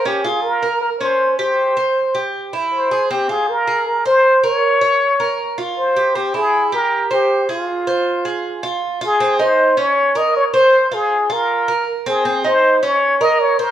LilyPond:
<<
  \new Staff \with { instrumentName = "Muted trumpet" } { \time 4/4 \key f \minor \tempo 4 = 157 g'8 aes'8 bes'4 bes'8 c''4 c''8~ | c''2 r4 c''4 | g'8 aes'8 bes'4 bes'8 c''4 des''8~ | des''2~ des''8 r8 c''4 |
g'8 aes'4 bes'4 g'4 f'8~ | f'2. r8 aes'8~ | \key aes \major aes'8 c''4 des''4 ees''8 des''8 c''8~ | c''8 aes'4 bes'4. r8 aes'8~ |
aes'8 c''4 des''4 ees''8 des''8 bes'8 | }
  \new Staff \with { instrumentName = "Cuban tres" } { \time 4/4 \key f \minor des'8 f'4 bes'4 des'4 g'8~ | g'8 c''4 g'4 e'4 aes'8 | c'8 f'4 aes'4 c''4 bes'8~ | bes'8 des''4 bes'4 f'4 g'8 |
c'8 e'4 g'4 c''4 aes'8~ | aes'8 c''4 aes'4 f'4 f'8 | \key aes \major c'8 ees'4 des'4 bes'4 c''8~ | c''8 f'4 f'4 bes'4 c'8 |
c'8 ees'4 des'4 bes'4 c''8 | }
>>